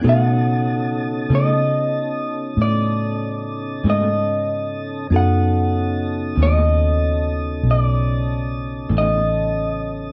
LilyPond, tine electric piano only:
\new Staff \with { instrumentName = "Tine electric piano" } { \time 12/8 \key b \dorian \tempo 4. = 47 <b dis' fis' a'>1. | <b dis' fis' a'>1. | }